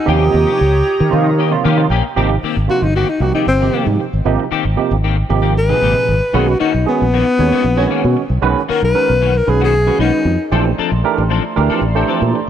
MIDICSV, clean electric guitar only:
0, 0, Header, 1, 3, 480
1, 0, Start_track
1, 0, Tempo, 522193
1, 64, Time_signature, 4, 2, 24, 8
1, 11485, End_track
2, 0, Start_track
2, 0, Title_t, "Clean electric guitar"
2, 0, Program_c, 0, 27
2, 73, Note_on_c, 0, 58, 76
2, 75, Note_on_c, 0, 61, 76
2, 80, Note_on_c, 0, 67, 83
2, 216, Note_off_c, 0, 58, 0
2, 217, Note_off_c, 0, 61, 0
2, 220, Note_off_c, 0, 67, 0
2, 430, Note_on_c, 0, 67, 53
2, 438, Note_on_c, 0, 61, 49
2, 541, Note_off_c, 0, 61, 0
2, 542, Note_off_c, 0, 67, 0
2, 1274, Note_on_c, 0, 58, 60
2, 1283, Note_on_c, 0, 61, 58
2, 1287, Note_on_c, 0, 67, 69
2, 1393, Note_off_c, 0, 67, 0
2, 1394, Note_off_c, 0, 58, 0
2, 1398, Note_off_c, 0, 61, 0
2, 1512, Note_on_c, 0, 58, 92
2, 1517, Note_on_c, 0, 61, 85
2, 1520, Note_on_c, 0, 67, 101
2, 1656, Note_off_c, 0, 58, 0
2, 1658, Note_off_c, 0, 61, 0
2, 1660, Note_off_c, 0, 67, 0
2, 1756, Note_on_c, 0, 58, 81
2, 1760, Note_on_c, 0, 61, 89
2, 1764, Note_on_c, 0, 67, 97
2, 1866, Note_off_c, 0, 67, 0
2, 1870, Note_off_c, 0, 61, 0
2, 1875, Note_off_c, 0, 58, 0
2, 1990, Note_on_c, 0, 51, 70
2, 1996, Note_on_c, 0, 58, 73
2, 1997, Note_on_c, 0, 60, 82
2, 1999, Note_on_c, 0, 67, 80
2, 2109, Note_off_c, 0, 60, 0
2, 2110, Note_off_c, 0, 67, 0
2, 2112, Note_off_c, 0, 51, 0
2, 2113, Note_off_c, 0, 58, 0
2, 2238, Note_on_c, 0, 51, 74
2, 2243, Note_on_c, 0, 60, 80
2, 2245, Note_on_c, 0, 58, 87
2, 2250, Note_on_c, 0, 67, 78
2, 2351, Note_off_c, 0, 67, 0
2, 2354, Note_off_c, 0, 58, 0
2, 2356, Note_off_c, 0, 51, 0
2, 2356, Note_off_c, 0, 60, 0
2, 2715, Note_on_c, 0, 51, 58
2, 2721, Note_on_c, 0, 58, 64
2, 2725, Note_on_c, 0, 60, 61
2, 2727, Note_on_c, 0, 67, 65
2, 2828, Note_off_c, 0, 67, 0
2, 2831, Note_off_c, 0, 60, 0
2, 2834, Note_off_c, 0, 58, 0
2, 2835, Note_off_c, 0, 51, 0
2, 3077, Note_on_c, 0, 67, 62
2, 3080, Note_on_c, 0, 60, 61
2, 3084, Note_on_c, 0, 51, 47
2, 3084, Note_on_c, 0, 58, 55
2, 3180, Note_off_c, 0, 51, 0
2, 3182, Note_off_c, 0, 67, 0
2, 3183, Note_off_c, 0, 58, 0
2, 3185, Note_off_c, 0, 60, 0
2, 3316, Note_on_c, 0, 67, 47
2, 3321, Note_on_c, 0, 60, 43
2, 3329, Note_on_c, 0, 58, 39
2, 3421, Note_off_c, 0, 58, 0
2, 3424, Note_off_c, 0, 60, 0
2, 3425, Note_on_c, 0, 51, 61
2, 3426, Note_off_c, 0, 67, 0
2, 3432, Note_on_c, 0, 58, 57
2, 3435, Note_on_c, 0, 60, 66
2, 3437, Note_on_c, 0, 67, 61
2, 3548, Note_off_c, 0, 67, 0
2, 3549, Note_off_c, 0, 60, 0
2, 3550, Note_off_c, 0, 51, 0
2, 3554, Note_off_c, 0, 58, 0
2, 4145, Note_on_c, 0, 51, 81
2, 4152, Note_on_c, 0, 58, 80
2, 4152, Note_on_c, 0, 60, 88
2, 4154, Note_on_c, 0, 67, 97
2, 4265, Note_off_c, 0, 67, 0
2, 4269, Note_off_c, 0, 60, 0
2, 4271, Note_off_c, 0, 51, 0
2, 4271, Note_off_c, 0, 58, 0
2, 4630, Note_on_c, 0, 51, 66
2, 4634, Note_on_c, 0, 58, 70
2, 4634, Note_on_c, 0, 60, 78
2, 4637, Note_on_c, 0, 67, 72
2, 4741, Note_off_c, 0, 67, 0
2, 4746, Note_off_c, 0, 60, 0
2, 4748, Note_off_c, 0, 58, 0
2, 4753, Note_off_c, 0, 51, 0
2, 4983, Note_on_c, 0, 67, 66
2, 4986, Note_on_c, 0, 60, 60
2, 4990, Note_on_c, 0, 51, 57
2, 4990, Note_on_c, 0, 58, 58
2, 5089, Note_off_c, 0, 51, 0
2, 5090, Note_off_c, 0, 58, 0
2, 5092, Note_off_c, 0, 67, 0
2, 5093, Note_off_c, 0, 60, 0
2, 5230, Note_on_c, 0, 67, 45
2, 5235, Note_on_c, 0, 60, 40
2, 5241, Note_on_c, 0, 58, 35
2, 5344, Note_off_c, 0, 58, 0
2, 5347, Note_off_c, 0, 67, 0
2, 5350, Note_off_c, 0, 60, 0
2, 5352, Note_on_c, 0, 51, 58
2, 5355, Note_on_c, 0, 58, 60
2, 5361, Note_on_c, 0, 60, 55
2, 5364, Note_on_c, 0, 67, 66
2, 5461, Note_off_c, 0, 67, 0
2, 5466, Note_off_c, 0, 60, 0
2, 5468, Note_off_c, 0, 58, 0
2, 5474, Note_off_c, 0, 51, 0
2, 5824, Note_on_c, 0, 51, 65
2, 5828, Note_on_c, 0, 58, 68
2, 5830, Note_on_c, 0, 61, 77
2, 5831, Note_on_c, 0, 66, 68
2, 5941, Note_off_c, 0, 61, 0
2, 5942, Note_off_c, 0, 66, 0
2, 5948, Note_off_c, 0, 58, 0
2, 5950, Note_off_c, 0, 51, 0
2, 6063, Note_on_c, 0, 51, 74
2, 6067, Note_on_c, 0, 58, 69
2, 6067, Note_on_c, 0, 61, 84
2, 6072, Note_on_c, 0, 66, 93
2, 6182, Note_off_c, 0, 66, 0
2, 6186, Note_off_c, 0, 61, 0
2, 6188, Note_off_c, 0, 58, 0
2, 6190, Note_off_c, 0, 51, 0
2, 6556, Note_on_c, 0, 51, 67
2, 6560, Note_on_c, 0, 58, 61
2, 6560, Note_on_c, 0, 61, 65
2, 6561, Note_on_c, 0, 66, 67
2, 6667, Note_off_c, 0, 61, 0
2, 6667, Note_off_c, 0, 66, 0
2, 6672, Note_off_c, 0, 58, 0
2, 6676, Note_off_c, 0, 51, 0
2, 6915, Note_on_c, 0, 66, 73
2, 6917, Note_on_c, 0, 61, 67
2, 6920, Note_on_c, 0, 58, 64
2, 6924, Note_on_c, 0, 51, 69
2, 7020, Note_off_c, 0, 51, 0
2, 7020, Note_off_c, 0, 61, 0
2, 7023, Note_off_c, 0, 58, 0
2, 7024, Note_off_c, 0, 66, 0
2, 7146, Note_on_c, 0, 66, 56
2, 7152, Note_on_c, 0, 61, 49
2, 7157, Note_on_c, 0, 58, 43
2, 7257, Note_off_c, 0, 58, 0
2, 7258, Note_off_c, 0, 61, 0
2, 7262, Note_off_c, 0, 66, 0
2, 7262, Note_on_c, 0, 51, 62
2, 7268, Note_on_c, 0, 58, 67
2, 7269, Note_on_c, 0, 61, 72
2, 7273, Note_on_c, 0, 66, 71
2, 7380, Note_off_c, 0, 61, 0
2, 7381, Note_off_c, 0, 66, 0
2, 7385, Note_off_c, 0, 58, 0
2, 7389, Note_off_c, 0, 51, 0
2, 7983, Note_on_c, 0, 51, 72
2, 7983, Note_on_c, 0, 58, 78
2, 7988, Note_on_c, 0, 61, 77
2, 7989, Note_on_c, 0, 66, 84
2, 8094, Note_off_c, 0, 66, 0
2, 8099, Note_off_c, 0, 61, 0
2, 8104, Note_off_c, 0, 58, 0
2, 8109, Note_off_c, 0, 51, 0
2, 8467, Note_on_c, 0, 51, 59
2, 8471, Note_on_c, 0, 58, 61
2, 8474, Note_on_c, 0, 61, 69
2, 8480, Note_on_c, 0, 66, 70
2, 8580, Note_off_c, 0, 66, 0
2, 8584, Note_off_c, 0, 61, 0
2, 8586, Note_off_c, 0, 58, 0
2, 8591, Note_off_c, 0, 51, 0
2, 8833, Note_on_c, 0, 66, 70
2, 8836, Note_on_c, 0, 61, 61
2, 8840, Note_on_c, 0, 58, 50
2, 8841, Note_on_c, 0, 51, 52
2, 8944, Note_off_c, 0, 51, 0
2, 8944, Note_off_c, 0, 58, 0
2, 8944, Note_off_c, 0, 61, 0
2, 8948, Note_off_c, 0, 66, 0
2, 9070, Note_on_c, 0, 66, 45
2, 9074, Note_on_c, 0, 61, 40
2, 9079, Note_on_c, 0, 58, 37
2, 9175, Note_off_c, 0, 58, 0
2, 9179, Note_off_c, 0, 61, 0
2, 9181, Note_off_c, 0, 66, 0
2, 9183, Note_on_c, 0, 51, 58
2, 9186, Note_on_c, 0, 58, 58
2, 9190, Note_on_c, 0, 61, 67
2, 9192, Note_on_c, 0, 66, 61
2, 9295, Note_off_c, 0, 61, 0
2, 9295, Note_off_c, 0, 66, 0
2, 9297, Note_off_c, 0, 58, 0
2, 9308, Note_off_c, 0, 51, 0
2, 9668, Note_on_c, 0, 53, 69
2, 9672, Note_on_c, 0, 60, 77
2, 9673, Note_on_c, 0, 62, 75
2, 9676, Note_on_c, 0, 69, 80
2, 9780, Note_off_c, 0, 69, 0
2, 9785, Note_off_c, 0, 62, 0
2, 9787, Note_off_c, 0, 60, 0
2, 9791, Note_off_c, 0, 53, 0
2, 9912, Note_on_c, 0, 53, 71
2, 9913, Note_on_c, 0, 60, 81
2, 9918, Note_on_c, 0, 62, 86
2, 9919, Note_on_c, 0, 69, 90
2, 10023, Note_off_c, 0, 69, 0
2, 10028, Note_off_c, 0, 62, 0
2, 10029, Note_off_c, 0, 60, 0
2, 10033, Note_off_c, 0, 53, 0
2, 10385, Note_on_c, 0, 53, 71
2, 10388, Note_on_c, 0, 60, 69
2, 10391, Note_on_c, 0, 62, 68
2, 10399, Note_on_c, 0, 69, 72
2, 10502, Note_off_c, 0, 69, 0
2, 10505, Note_off_c, 0, 62, 0
2, 10509, Note_off_c, 0, 53, 0
2, 10509, Note_off_c, 0, 60, 0
2, 10753, Note_on_c, 0, 69, 79
2, 10755, Note_on_c, 0, 62, 72
2, 10758, Note_on_c, 0, 60, 55
2, 10763, Note_on_c, 0, 53, 62
2, 10855, Note_off_c, 0, 53, 0
2, 10856, Note_off_c, 0, 62, 0
2, 10857, Note_off_c, 0, 60, 0
2, 10859, Note_off_c, 0, 69, 0
2, 10993, Note_on_c, 0, 69, 52
2, 10997, Note_on_c, 0, 62, 47
2, 11003, Note_on_c, 0, 60, 47
2, 11094, Note_off_c, 0, 60, 0
2, 11099, Note_off_c, 0, 62, 0
2, 11101, Note_off_c, 0, 69, 0
2, 11104, Note_on_c, 0, 53, 70
2, 11105, Note_on_c, 0, 60, 65
2, 11110, Note_on_c, 0, 62, 70
2, 11112, Note_on_c, 0, 69, 69
2, 11222, Note_off_c, 0, 69, 0
2, 11228, Note_off_c, 0, 53, 0
2, 11228, Note_off_c, 0, 62, 0
2, 11229, Note_off_c, 0, 60, 0
2, 11485, End_track
3, 0, Start_track
3, 0, Title_t, "Muted clean electric guitar strokes"
3, 309, Note_on_c, 9, 29, 39
3, 401, Note_off_c, 9, 29, 0
3, 551, Note_on_c, 9, 29, 40
3, 643, Note_off_c, 9, 29, 0
3, 671, Note_on_c, 9, 29, 41
3, 762, Note_off_c, 9, 29, 0
3, 793, Note_on_c, 9, 29, 45
3, 885, Note_off_c, 9, 29, 0
3, 914, Note_on_c, 9, 29, 46
3, 1006, Note_off_c, 9, 29, 0
3, 1161, Note_on_c, 9, 29, 47
3, 1253, Note_off_c, 9, 29, 0
3, 1404, Note_on_c, 9, 29, 45
3, 1496, Note_off_c, 9, 29, 0
3, 1877, Note_on_c, 9, 29, 40
3, 1969, Note_off_c, 9, 29, 0
3, 2120, Note_on_c, 9, 29, 36
3, 2212, Note_off_c, 9, 29, 0
3, 2362, Note_on_c, 9, 29, 40
3, 2454, Note_off_c, 9, 29, 0
3, 2601, Note_on_c, 9, 29, 38
3, 2692, Note_off_c, 9, 29, 0
3, 2839, Note_on_c, 9, 29, 36
3, 2931, Note_off_c, 9, 29, 0
3, 2951, Note_on_c, 9, 29, 39
3, 3043, Note_off_c, 9, 29, 0
3, 3191, Note_on_c, 9, 29, 32
3, 3283, Note_off_c, 9, 29, 0
3, 3559, Note_on_c, 9, 29, 38
3, 3651, Note_off_c, 9, 29, 0
3, 3674, Note_on_c, 9, 29, 35
3, 3766, Note_off_c, 9, 29, 0
3, 4041, Note_on_c, 9, 29, 44
3, 4132, Note_off_c, 9, 29, 0
3, 4521, Note_on_c, 9, 29, 37
3, 4613, Note_off_c, 9, 29, 0
3, 4752, Note_on_c, 9, 29, 45
3, 4844, Note_off_c, 9, 29, 0
3, 4867, Note_on_c, 9, 29, 42
3, 4959, Note_off_c, 9, 29, 0
3, 5100, Note_on_c, 9, 29, 32
3, 5192, Note_off_c, 9, 29, 0
3, 5472, Note_on_c, 9, 29, 39
3, 5564, Note_off_c, 9, 29, 0
3, 5588, Note_on_c, 9, 29, 38
3, 5680, Note_off_c, 9, 29, 0
3, 5952, Note_on_c, 9, 29, 33
3, 6044, Note_off_c, 9, 29, 0
3, 6193, Note_on_c, 9, 29, 40
3, 6285, Note_off_c, 9, 29, 0
3, 6438, Note_on_c, 9, 29, 41
3, 6530, Note_off_c, 9, 29, 0
3, 6678, Note_on_c, 9, 29, 36
3, 6769, Note_off_c, 9, 29, 0
3, 6793, Note_on_c, 9, 29, 39
3, 6884, Note_off_c, 9, 29, 0
3, 7391, Note_on_c, 9, 29, 36
3, 7483, Note_off_c, 9, 29, 0
3, 7505, Note_on_c, 9, 29, 42
3, 7597, Note_off_c, 9, 29, 0
3, 7865, Note_on_c, 9, 29, 40
3, 7957, Note_off_c, 9, 29, 0
3, 8105, Note_on_c, 9, 29, 50
3, 8197, Note_off_c, 9, 29, 0
3, 8352, Note_on_c, 9, 29, 37
3, 8444, Note_off_c, 9, 29, 0
3, 8591, Note_on_c, 9, 29, 36
3, 8683, Note_off_c, 9, 29, 0
3, 8710, Note_on_c, 9, 29, 35
3, 8802, Note_off_c, 9, 29, 0
3, 8955, Note_on_c, 9, 29, 33
3, 9046, Note_off_c, 9, 29, 0
3, 9306, Note_on_c, 9, 29, 35
3, 9398, Note_off_c, 9, 29, 0
3, 9428, Note_on_c, 9, 29, 40
3, 9520, Note_off_c, 9, 29, 0
3, 9791, Note_on_c, 9, 29, 48
3, 9883, Note_off_c, 9, 29, 0
3, 10034, Note_on_c, 9, 29, 49
3, 10126, Note_off_c, 9, 29, 0
3, 10276, Note_on_c, 9, 29, 47
3, 10368, Note_off_c, 9, 29, 0
3, 10513, Note_on_c, 9, 29, 44
3, 10605, Note_off_c, 9, 29, 0
3, 10634, Note_on_c, 9, 29, 47
3, 10726, Note_off_c, 9, 29, 0
3, 10866, Note_on_c, 9, 29, 37
3, 10958, Note_off_c, 9, 29, 0
3, 11233, Note_on_c, 9, 29, 45
3, 11325, Note_off_c, 9, 29, 0
3, 11354, Note_on_c, 9, 29, 46
3, 11446, Note_off_c, 9, 29, 0
3, 11485, End_track
0, 0, End_of_file